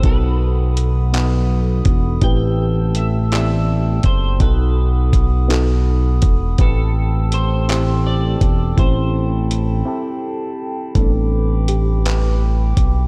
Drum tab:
HH |x-xx-x|x-xx-x|x-xx-x|x-xx-x|
CP |---x--|---x--|---x--|---x--|
BD |o----o|o----o|o-o--o|o----o|

HH |x-x---|x-xx-x|
CP |------|---x--|
BD |o-----|o----o|